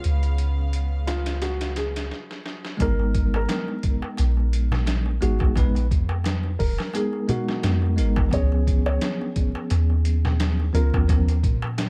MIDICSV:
0, 0, Header, 1, 7, 480
1, 0, Start_track
1, 0, Tempo, 689655
1, 33, Time_signature, 4, 2, 24, 8
1, 8277, End_track
2, 0, Start_track
2, 0, Title_t, "Felt piano"
2, 0, Program_c, 0, 0
2, 747, Note_on_c, 0, 65, 77
2, 968, Note_off_c, 0, 65, 0
2, 987, Note_on_c, 0, 66, 82
2, 1209, Note_off_c, 0, 66, 0
2, 1226, Note_on_c, 0, 68, 79
2, 1469, Note_off_c, 0, 68, 0
2, 1961, Note_on_c, 0, 70, 97
2, 2291, Note_off_c, 0, 70, 0
2, 2337, Note_on_c, 0, 70, 97
2, 2646, Note_off_c, 0, 70, 0
2, 3634, Note_on_c, 0, 66, 89
2, 3852, Note_off_c, 0, 66, 0
2, 4587, Note_on_c, 0, 70, 87
2, 4809, Note_off_c, 0, 70, 0
2, 4836, Note_on_c, 0, 68, 89
2, 5053, Note_off_c, 0, 68, 0
2, 5076, Note_on_c, 0, 66, 86
2, 5709, Note_off_c, 0, 66, 0
2, 5802, Note_on_c, 0, 73, 101
2, 6131, Note_off_c, 0, 73, 0
2, 6168, Note_on_c, 0, 73, 98
2, 6481, Note_off_c, 0, 73, 0
2, 7478, Note_on_c, 0, 70, 91
2, 7694, Note_off_c, 0, 70, 0
2, 8277, End_track
3, 0, Start_track
3, 0, Title_t, "Tine electric piano"
3, 0, Program_c, 1, 4
3, 0, Note_on_c, 1, 56, 69
3, 0, Note_on_c, 1, 59, 63
3, 0, Note_on_c, 1, 61, 63
3, 0, Note_on_c, 1, 68, 80
3, 1464, Note_off_c, 1, 56, 0
3, 1471, Note_off_c, 1, 59, 0
3, 1478, Note_off_c, 1, 61, 0
3, 1483, Note_off_c, 1, 68, 0
3, 1929, Note_on_c, 1, 56, 86
3, 1944, Note_on_c, 1, 59, 74
3, 1955, Note_on_c, 1, 63, 77
3, 1964, Note_on_c, 1, 70, 94
3, 3595, Note_off_c, 1, 56, 0
3, 3603, Note_off_c, 1, 59, 0
3, 3608, Note_off_c, 1, 63, 0
3, 3613, Note_off_c, 1, 70, 0
3, 3625, Note_on_c, 1, 56, 78
3, 3630, Note_on_c, 1, 59, 72
3, 3636, Note_on_c, 1, 63, 74
3, 3642, Note_on_c, 1, 68, 85
3, 3843, Note_off_c, 1, 56, 0
3, 3846, Note_off_c, 1, 59, 0
3, 3849, Note_off_c, 1, 63, 0
3, 3852, Note_off_c, 1, 68, 0
3, 3867, Note_on_c, 1, 56, 81
3, 3870, Note_on_c, 1, 59, 67
3, 3879, Note_on_c, 1, 63, 72
3, 3881, Note_on_c, 1, 71, 85
3, 4073, Note_off_c, 1, 56, 0
3, 4074, Note_off_c, 1, 59, 0
3, 4078, Note_off_c, 1, 63, 0
3, 4080, Note_off_c, 1, 71, 0
3, 4829, Note_on_c, 1, 56, 81
3, 4835, Note_on_c, 1, 59, 67
3, 4840, Note_on_c, 1, 63, 72
3, 4843, Note_on_c, 1, 70, 86
3, 5045, Note_off_c, 1, 56, 0
3, 5048, Note_off_c, 1, 59, 0
3, 5051, Note_off_c, 1, 63, 0
3, 5052, Note_off_c, 1, 70, 0
3, 5065, Note_on_c, 1, 56, 73
3, 5069, Note_on_c, 1, 59, 66
3, 5077, Note_on_c, 1, 63, 66
3, 5078, Note_on_c, 1, 70, 77
3, 5524, Note_off_c, 1, 56, 0
3, 5525, Note_off_c, 1, 59, 0
3, 5529, Note_off_c, 1, 63, 0
3, 5530, Note_off_c, 1, 70, 0
3, 5540, Note_on_c, 1, 56, 82
3, 5548, Note_on_c, 1, 59, 68
3, 5552, Note_on_c, 1, 63, 73
3, 5559, Note_on_c, 1, 70, 84
3, 5761, Note_off_c, 1, 56, 0
3, 5765, Note_off_c, 1, 59, 0
3, 5767, Note_off_c, 1, 63, 0
3, 5770, Note_off_c, 1, 70, 0
3, 5771, Note_on_c, 1, 53, 84
3, 5782, Note_on_c, 1, 59, 80
3, 5794, Note_on_c, 1, 61, 80
3, 5807, Note_on_c, 1, 68, 96
3, 7436, Note_off_c, 1, 53, 0
3, 7442, Note_off_c, 1, 59, 0
3, 7448, Note_off_c, 1, 61, 0
3, 7454, Note_off_c, 1, 68, 0
3, 7469, Note_on_c, 1, 53, 79
3, 7475, Note_on_c, 1, 59, 73
3, 7481, Note_on_c, 1, 61, 71
3, 7485, Note_on_c, 1, 65, 88
3, 7686, Note_off_c, 1, 53, 0
3, 7688, Note_off_c, 1, 59, 0
3, 7691, Note_off_c, 1, 61, 0
3, 7694, Note_off_c, 1, 65, 0
3, 7709, Note_on_c, 1, 53, 83
3, 7714, Note_on_c, 1, 59, 70
3, 7721, Note_on_c, 1, 61, 70
3, 7728, Note_on_c, 1, 70, 86
3, 7913, Note_off_c, 1, 53, 0
3, 7916, Note_off_c, 1, 59, 0
3, 7920, Note_off_c, 1, 61, 0
3, 7923, Note_off_c, 1, 70, 0
3, 8277, End_track
4, 0, Start_track
4, 0, Title_t, "String section"
4, 0, Program_c, 2, 48
4, 0, Note_on_c, 2, 49, 72
4, 0, Note_on_c, 2, 59, 67
4, 0, Note_on_c, 2, 77, 79
4, 1441, Note_off_c, 2, 49, 0
4, 1443, Note_off_c, 2, 77, 0
4, 1444, Note_off_c, 2, 59, 0
4, 8277, End_track
5, 0, Start_track
5, 0, Title_t, "808-style bass"
5, 0, Program_c, 3, 38
5, 37, Note_on_c, 3, 37, 84
5, 1475, Note_off_c, 3, 37, 0
5, 1952, Note_on_c, 3, 32, 103
5, 2412, Note_off_c, 3, 32, 0
5, 2918, Note_on_c, 3, 34, 93
5, 3615, Note_off_c, 3, 34, 0
5, 3639, Note_on_c, 3, 32, 93
5, 3754, Note_off_c, 3, 32, 0
5, 3770, Note_on_c, 3, 34, 102
5, 4119, Note_on_c, 3, 41, 89
5, 4130, Note_off_c, 3, 34, 0
5, 4576, Note_off_c, 3, 41, 0
5, 4597, Note_on_c, 3, 27, 102
5, 4712, Note_off_c, 3, 27, 0
5, 5319, Note_on_c, 3, 41, 92
5, 5558, Note_on_c, 3, 32, 116
5, 5568, Note_off_c, 3, 41, 0
5, 5770, Note_off_c, 3, 32, 0
5, 5799, Note_on_c, 3, 37, 98
5, 6255, Note_off_c, 3, 37, 0
5, 6760, Note_on_c, 3, 39, 101
5, 7456, Note_off_c, 3, 39, 0
5, 7479, Note_on_c, 3, 37, 97
5, 7594, Note_off_c, 3, 37, 0
5, 7616, Note_on_c, 3, 39, 96
5, 7963, Note_on_c, 3, 46, 85
5, 7973, Note_off_c, 3, 39, 0
5, 8277, Note_off_c, 3, 46, 0
5, 8277, End_track
6, 0, Start_track
6, 0, Title_t, "Darbuka"
6, 1949, Note_on_c, 9, 63, 65
6, 2019, Note_off_c, 9, 63, 0
6, 2084, Note_on_c, 9, 63, 41
6, 2154, Note_off_c, 9, 63, 0
6, 2325, Note_on_c, 9, 63, 85
6, 2394, Note_off_c, 9, 63, 0
6, 2426, Note_on_c, 9, 63, 66
6, 2496, Note_off_c, 9, 63, 0
6, 2562, Note_on_c, 9, 63, 39
6, 2632, Note_off_c, 9, 63, 0
6, 2800, Note_on_c, 9, 63, 77
6, 2869, Note_off_c, 9, 63, 0
6, 2905, Note_on_c, 9, 63, 62
6, 2975, Note_off_c, 9, 63, 0
6, 3041, Note_on_c, 9, 63, 34
6, 3111, Note_off_c, 9, 63, 0
6, 3281, Note_on_c, 9, 64, 57
6, 3284, Note_on_c, 9, 63, 82
6, 3351, Note_off_c, 9, 64, 0
6, 3354, Note_off_c, 9, 63, 0
6, 3385, Note_on_c, 9, 63, 57
6, 3455, Note_off_c, 9, 63, 0
6, 3520, Note_on_c, 9, 63, 40
6, 3590, Note_off_c, 9, 63, 0
6, 3759, Note_on_c, 9, 63, 80
6, 3829, Note_off_c, 9, 63, 0
6, 3866, Note_on_c, 9, 63, 70
6, 3936, Note_off_c, 9, 63, 0
6, 4002, Note_on_c, 9, 63, 40
6, 4072, Note_off_c, 9, 63, 0
6, 4239, Note_on_c, 9, 63, 87
6, 4309, Note_off_c, 9, 63, 0
6, 4345, Note_on_c, 9, 63, 72
6, 4415, Note_off_c, 9, 63, 0
6, 4479, Note_on_c, 9, 63, 38
6, 4549, Note_off_c, 9, 63, 0
6, 4722, Note_on_c, 9, 63, 82
6, 4792, Note_off_c, 9, 63, 0
6, 4827, Note_on_c, 9, 63, 65
6, 4897, Note_off_c, 9, 63, 0
6, 4962, Note_on_c, 9, 63, 35
6, 5032, Note_off_c, 9, 63, 0
6, 5073, Note_on_c, 9, 64, 90
6, 5143, Note_off_c, 9, 64, 0
6, 5209, Note_on_c, 9, 63, 72
6, 5278, Note_off_c, 9, 63, 0
6, 5312, Note_on_c, 9, 63, 72
6, 5382, Note_off_c, 9, 63, 0
6, 5443, Note_on_c, 9, 63, 42
6, 5512, Note_off_c, 9, 63, 0
6, 5682, Note_on_c, 9, 63, 94
6, 5751, Note_off_c, 9, 63, 0
6, 5786, Note_on_c, 9, 63, 64
6, 5855, Note_off_c, 9, 63, 0
6, 5930, Note_on_c, 9, 63, 45
6, 6000, Note_off_c, 9, 63, 0
6, 6168, Note_on_c, 9, 63, 83
6, 6237, Note_off_c, 9, 63, 0
6, 6276, Note_on_c, 9, 63, 65
6, 6346, Note_off_c, 9, 63, 0
6, 6413, Note_on_c, 9, 63, 42
6, 6482, Note_off_c, 9, 63, 0
6, 6647, Note_on_c, 9, 63, 75
6, 6717, Note_off_c, 9, 63, 0
6, 6756, Note_on_c, 9, 63, 69
6, 6826, Note_off_c, 9, 63, 0
6, 6889, Note_on_c, 9, 63, 37
6, 6959, Note_off_c, 9, 63, 0
6, 7136, Note_on_c, 9, 63, 77
6, 7136, Note_on_c, 9, 64, 65
6, 7205, Note_off_c, 9, 64, 0
6, 7206, Note_off_c, 9, 63, 0
6, 7242, Note_on_c, 9, 63, 61
6, 7312, Note_off_c, 9, 63, 0
6, 7376, Note_on_c, 9, 63, 41
6, 7446, Note_off_c, 9, 63, 0
6, 7615, Note_on_c, 9, 63, 93
6, 7684, Note_off_c, 9, 63, 0
6, 7724, Note_on_c, 9, 63, 70
6, 7794, Note_off_c, 9, 63, 0
6, 7860, Note_on_c, 9, 63, 42
6, 7930, Note_off_c, 9, 63, 0
6, 8090, Note_on_c, 9, 63, 90
6, 8159, Note_off_c, 9, 63, 0
6, 8198, Note_on_c, 9, 63, 65
6, 8267, Note_off_c, 9, 63, 0
6, 8277, End_track
7, 0, Start_track
7, 0, Title_t, "Drums"
7, 28, Note_on_c, 9, 42, 74
7, 97, Note_off_c, 9, 42, 0
7, 159, Note_on_c, 9, 42, 34
7, 228, Note_off_c, 9, 42, 0
7, 266, Note_on_c, 9, 42, 59
7, 336, Note_off_c, 9, 42, 0
7, 509, Note_on_c, 9, 42, 75
7, 578, Note_off_c, 9, 42, 0
7, 748, Note_on_c, 9, 42, 71
7, 751, Note_on_c, 9, 38, 94
7, 818, Note_off_c, 9, 42, 0
7, 821, Note_off_c, 9, 38, 0
7, 878, Note_on_c, 9, 42, 76
7, 881, Note_on_c, 9, 38, 99
7, 947, Note_off_c, 9, 42, 0
7, 950, Note_off_c, 9, 38, 0
7, 986, Note_on_c, 9, 42, 72
7, 989, Note_on_c, 9, 38, 95
7, 1056, Note_off_c, 9, 42, 0
7, 1058, Note_off_c, 9, 38, 0
7, 1120, Note_on_c, 9, 42, 71
7, 1122, Note_on_c, 9, 38, 93
7, 1189, Note_off_c, 9, 42, 0
7, 1192, Note_off_c, 9, 38, 0
7, 1225, Note_on_c, 9, 42, 66
7, 1228, Note_on_c, 9, 38, 85
7, 1295, Note_off_c, 9, 42, 0
7, 1298, Note_off_c, 9, 38, 0
7, 1365, Note_on_c, 9, 42, 69
7, 1368, Note_on_c, 9, 38, 92
7, 1435, Note_off_c, 9, 42, 0
7, 1437, Note_off_c, 9, 38, 0
7, 1471, Note_on_c, 9, 38, 56
7, 1540, Note_off_c, 9, 38, 0
7, 1606, Note_on_c, 9, 38, 56
7, 1676, Note_off_c, 9, 38, 0
7, 1709, Note_on_c, 9, 38, 74
7, 1779, Note_off_c, 9, 38, 0
7, 1842, Note_on_c, 9, 38, 73
7, 1911, Note_off_c, 9, 38, 0
7, 1949, Note_on_c, 9, 42, 85
7, 1950, Note_on_c, 9, 36, 100
7, 2019, Note_off_c, 9, 36, 0
7, 2019, Note_off_c, 9, 42, 0
7, 2190, Note_on_c, 9, 36, 94
7, 2190, Note_on_c, 9, 42, 69
7, 2259, Note_off_c, 9, 42, 0
7, 2260, Note_off_c, 9, 36, 0
7, 2429, Note_on_c, 9, 42, 83
7, 2432, Note_on_c, 9, 38, 114
7, 2499, Note_off_c, 9, 42, 0
7, 2501, Note_off_c, 9, 38, 0
7, 2667, Note_on_c, 9, 42, 66
7, 2670, Note_on_c, 9, 36, 94
7, 2736, Note_off_c, 9, 42, 0
7, 2740, Note_off_c, 9, 36, 0
7, 2911, Note_on_c, 9, 42, 94
7, 2980, Note_off_c, 9, 42, 0
7, 3154, Note_on_c, 9, 42, 65
7, 3224, Note_off_c, 9, 42, 0
7, 3289, Note_on_c, 9, 38, 42
7, 3358, Note_off_c, 9, 38, 0
7, 3390, Note_on_c, 9, 42, 90
7, 3393, Note_on_c, 9, 38, 116
7, 3460, Note_off_c, 9, 42, 0
7, 3462, Note_off_c, 9, 38, 0
7, 3633, Note_on_c, 9, 42, 63
7, 3702, Note_off_c, 9, 42, 0
7, 3767, Note_on_c, 9, 36, 92
7, 3836, Note_off_c, 9, 36, 0
7, 3874, Note_on_c, 9, 36, 106
7, 3876, Note_on_c, 9, 42, 87
7, 3944, Note_off_c, 9, 36, 0
7, 3945, Note_off_c, 9, 42, 0
7, 4011, Note_on_c, 9, 42, 42
7, 4080, Note_off_c, 9, 42, 0
7, 4115, Note_on_c, 9, 36, 94
7, 4116, Note_on_c, 9, 42, 65
7, 4184, Note_off_c, 9, 36, 0
7, 4186, Note_off_c, 9, 42, 0
7, 4354, Note_on_c, 9, 42, 85
7, 4356, Note_on_c, 9, 38, 117
7, 4423, Note_off_c, 9, 42, 0
7, 4426, Note_off_c, 9, 38, 0
7, 4593, Note_on_c, 9, 46, 79
7, 4594, Note_on_c, 9, 36, 96
7, 4663, Note_off_c, 9, 46, 0
7, 4664, Note_off_c, 9, 36, 0
7, 4733, Note_on_c, 9, 38, 60
7, 4803, Note_off_c, 9, 38, 0
7, 4835, Note_on_c, 9, 42, 93
7, 4905, Note_off_c, 9, 42, 0
7, 5071, Note_on_c, 9, 42, 67
7, 5141, Note_off_c, 9, 42, 0
7, 5209, Note_on_c, 9, 38, 51
7, 5279, Note_off_c, 9, 38, 0
7, 5313, Note_on_c, 9, 42, 89
7, 5316, Note_on_c, 9, 38, 116
7, 5383, Note_off_c, 9, 42, 0
7, 5386, Note_off_c, 9, 38, 0
7, 5554, Note_on_c, 9, 42, 69
7, 5623, Note_off_c, 9, 42, 0
7, 5688, Note_on_c, 9, 36, 100
7, 5758, Note_off_c, 9, 36, 0
7, 5795, Note_on_c, 9, 42, 80
7, 5796, Note_on_c, 9, 36, 109
7, 5865, Note_off_c, 9, 36, 0
7, 5865, Note_off_c, 9, 42, 0
7, 6036, Note_on_c, 9, 36, 94
7, 6038, Note_on_c, 9, 42, 70
7, 6106, Note_off_c, 9, 36, 0
7, 6108, Note_off_c, 9, 42, 0
7, 6273, Note_on_c, 9, 42, 83
7, 6276, Note_on_c, 9, 38, 122
7, 6343, Note_off_c, 9, 42, 0
7, 6346, Note_off_c, 9, 38, 0
7, 6513, Note_on_c, 9, 42, 68
7, 6516, Note_on_c, 9, 36, 97
7, 6583, Note_off_c, 9, 42, 0
7, 6585, Note_off_c, 9, 36, 0
7, 6753, Note_on_c, 9, 42, 90
7, 6822, Note_off_c, 9, 42, 0
7, 6995, Note_on_c, 9, 42, 65
7, 7065, Note_off_c, 9, 42, 0
7, 7133, Note_on_c, 9, 38, 45
7, 7203, Note_off_c, 9, 38, 0
7, 7237, Note_on_c, 9, 42, 88
7, 7240, Note_on_c, 9, 38, 117
7, 7307, Note_off_c, 9, 42, 0
7, 7309, Note_off_c, 9, 38, 0
7, 7479, Note_on_c, 9, 42, 69
7, 7549, Note_off_c, 9, 42, 0
7, 7612, Note_on_c, 9, 36, 98
7, 7682, Note_off_c, 9, 36, 0
7, 7718, Note_on_c, 9, 42, 82
7, 7719, Note_on_c, 9, 36, 108
7, 7788, Note_off_c, 9, 36, 0
7, 7788, Note_off_c, 9, 42, 0
7, 7854, Note_on_c, 9, 42, 44
7, 7923, Note_off_c, 9, 42, 0
7, 7959, Note_on_c, 9, 36, 101
7, 7961, Note_on_c, 9, 42, 67
7, 8028, Note_off_c, 9, 36, 0
7, 8030, Note_off_c, 9, 42, 0
7, 8200, Note_on_c, 9, 42, 89
7, 8202, Note_on_c, 9, 38, 121
7, 8269, Note_off_c, 9, 42, 0
7, 8272, Note_off_c, 9, 38, 0
7, 8277, End_track
0, 0, End_of_file